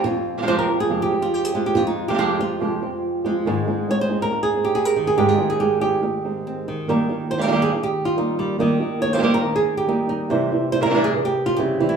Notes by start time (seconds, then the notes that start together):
0.04 F2 F4, muted nylon-string guitar stroke
0.38 C3 F3 G#3 C4 G4
0.42 C3 F3 G#3 C4 G4
0.47 F2 C3 F3 G#3 C4 G4 C5
0.59 A#4
0.68 F3 G#3 C4 G4
0.80 G#4
0.89 F2 C3 F3 G#3 C4 G4
1.02 G4
1.11 F3 G#3 C4 G4
1.22 F4
1.34 G4
1.45 G#4
1.53 F3 G#3 C4 G4
1.66 G4
1.75 F2 F4, muted nylon-string guitar stroke
1.87 D#4
2.08 C3 F3 G#3 C4 G4
2.14 C3 F3 G#3 C4 G4
2.18 F2 C3 F3 G#3 C4 F4 G4
2.39 F3 G#3 C4 F4 G4
2.60 F2 C3 F3 G#3 C4 G4
2.82 F3 G#3 C4 G4
3.24 F3 G#3 C4 G4
3.46 G#2 D#3 G#3 C4 D#4 G#4
3.67 G#3 C4 D#4 G#4
3.89 G#3 C4 D#4 G#4 C#5
4.01 C5
4.09 G#3 C4 D#4 G#4
4.22 A#4
4.32 muted nylon-string guitar stroke
4.43 G#4
4.54 G#3 C4 D#4
4.65 G4
4.75 G#4
4.85 A#4
4.96 D#3
5.07 G#4
5.17 G#2 D#3 G#3 C4 D#4 G4 G#4
5.29 F4
5.38 G#3 C4 D#4 G#4
5.50 G#4
5.60 G#3 C4 D#4 G4 G#4
5.81 G#3 C4 D#4 G4 G#4
6.02 muted nylon-string guitar stroke
6.24 G#3 C4 D#4
6.47 C4
6.68 D#3
6.88 D#3 G3 A#3 D#4 G4 A#4
7.09 A#3 D#4 G4
7.30 A#3 D#4 G4 C5
7.38 G3 A#3 D#4 G4 A#4
7.43 G3 A#3 D#4 G4
7.47 G3 A#3 D#4 G4
7.52 D#3 G3 A#3 D#4 G4
7.62 G#4
7.73 muted nylon-string guitar stroke
7.83 G4
8.05 F4
8.16 G3 A#3 D#4 G4
8.39 G3
8.59 D#3 G3 A#3 D#4 G4 D#5
8.80 A#3 D#4 G4
9.01 A#3 D#4 G4 C#5
9.13 G3 A#3 D#4 G4 C5
9.18 G3 A#3 D#4 G4
9.23 D#3 G3 A#3 D#4 G4
9.34 A#4
9.44 muted nylon-string guitar stroke
9.56 G#4
9.77 G4
9.87 G3 A#3 D#4 G4
10.09 D#4
10.29 C3 E3 G3 C4 E4 C5
10.51 G3 C4 E4
10.72 G3 C4 E4 C5
10.81 E3 G3 C4 E4 A#4
10.85 E3 G3 C4 E4
10.90 E3 G3 C4 E4
10.94 C3 E3 G3 C4 E4
11.04 G#4
11.16 muted nylon-string guitar stroke
11.25 G4
11.46 F4
11.57 C#3 E3 G3 C4 E4 G4
11.80 E3 G3 C4 E4
11.89 E4